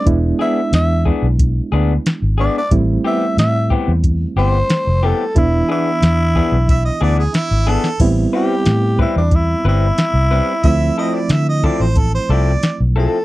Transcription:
<<
  \new Staff \with { instrumentName = "Harmonica" } { \time 4/4 \key a \minor \tempo 4 = 91 r1 | r1 | r2 e''16 dis''16 d''16 gis'16 e'8 a'8 | r1 |
e''8 dis''16 d''16 e''16 dis''16 d''16 c''16 a'16 c''16 d''8. r8. | }
  \new Staff \with { instrumentName = "Tenor saxophone" } { \time 4/4 \key a \minor r8 e''8 e''8 r2 d''16 d''16 | r8 e''8 e''8 r4 c''4 a'8 | e'8 e'2 r4. | r8 g'4 e'16 d'16 e'8 e'4.~ |
e'4. r2 a'8 | }
  \new Staff \with { instrumentName = "Clean electric guitar" } { \time 4/4 \key a \minor r8 <b d' gis'>8 r8 <b d' gis'>8 r8 <b d' gis'>8 r8 <b d' gis'>8 | r8 <e b c' g'>8 r8 <e b c' g'>8 r8 <e b c' g'>8 r8 <e b c' g'>8 | r8 <e b d' gis'>8 r8 <e b d' gis'>8 r8 <e b d' gis'>8 r8 <e b d' gis'>8 | r8 <g c' e' b'>8 r8 <g c' e' b'>8 r8 <g c' e' b'>8 r8 <g c' e' b'>8 |
r8 <f c' e' a'>8 r8 <f c' e' a'>8 r8 <f c' e' a'>8 r8 <f c' e' a'>8 | }
  \new Staff \with { instrumentName = "Reed electric piano" } { \time 4/4 \key a \minor <gis b d' e'>1 | <g a c' e'>1 | <e b d' e'>1 | <g b c' e'>1 |
<f a c' e'>1 | }
  \new Staff \with { instrumentName = "Fingered electric bass" } { \clef bass \time 4/4 \key a \minor e,,8 r8 e,8. b,,8. d,8 r16 gis,,8 r16 | a,,8 r8 a,8. e,8. g,,8 r16 f,,8 r16 | e,,8 r8 e,8. b,,8. d,8 r16 gis,,8 r16 | a,,8 r8 a,8. e,8. g,,8 r16 c,8 r16 |
d,8 r8 d8. a,,8. c,8 r16 b,,8 r16 | }
  \new DrumStaff \with { instrumentName = "Drums" } \drummode { \time 4/4 <hh bd>8 sn8 <hh sn>8 bd8 <hh bd>4 <hh sn>4 | <hh bd>4 <hh sn>8 bd8 <hh bd>4 <hh sn>4 | <hh bd>4 <hh sn>8 bd8 <hh bd>4 <hh sn>8 sn16 sn16 | <cymc hh bd>4 <hh sn>8 bd8 <hh bd>4 <hh sn>4 |
<hh bd>4 <hh sn>8 bd8 <hh bd>4 <hh sn>4 | }
>>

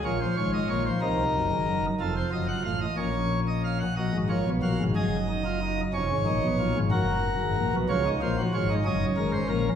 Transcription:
<<
  \new Staff \with { instrumentName = "Pipe organ" } { \time 6/8 \key bes \phrygian \tempo 4. = 61 << { des''16 c''16 des''16 ees''16 des''16 c''16 bes'4. | a'16 c''16 ees''16 ges''16 f''16 ees''16 des''8. ees''16 f''16 ges''16 | \key fis \major dis''8 cis''8 eis''8 dis''4. | cis''4. ais'4. |
cis''8 bis'8 cis''8 dis''8 ais'16 bis'16 ais'8 | } \\ { f'4. ees'4. | f'4. des'4. | fis'8 eis'8 fis'8 gis'8 dis'16 eis'16 dis'8 | cis'8 dis'8 eis'8 fis'4. |
eis'16 dis'16 eis'16 fis'16 eis'16 dis'16 cis'4. | } >> }
  \new Staff \with { instrumentName = "Pipe organ" } { \clef bass \time 6/8 \key bes \phrygian <bes,, bes,>8 <aes,, aes,>8 <bes,, bes,>8 <c, c>8 <ges,, ges,>16 <aes,, aes,>16 <ges,, ges,>8 | <f,, f,>8 <ges,, ges,>8 <a,, a,>8 <bes,, bes,>4. | \key fis \major <ais,, ais,>16 <gis,, gis,>16 <ais,, ais,>16 <b,, b,>16 <ais,, ais,>16 <gis,, gis,>16 <fis,, fis,>4. | <eis,, eis,>16 <gis,, gis,>16 <ais,, ais,>16 <b,, b,>16 <ais,, ais,>16 <gis,, gis,>16 <fis,, fis,>8. <gis,, gis,>16 <ais,, ais,>16 <b,, b,>16 |
<cis, cis>8 <ais,, ais,>8 <gis,, gis,>8 <fis,, fis,>8 <gis,, gis,>8 <ais,, ais,>8 | }
>>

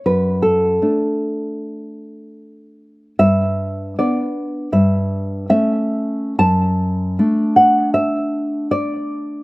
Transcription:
\new Staff \with { instrumentName = "Nylon-string guitar" } { \time 4/4 \key d \major \tempo 4 = 78 << { b'8 a'2.~ a'8 | e''4 d''4 e''4 e''4 | a''4. fis''8 e''4 d''4 | } \\ { fis,4 <a d'>2. | g,4 <b d'>4 g,4 <a cis'>4 | fis,4 <a d'>2. | } >> }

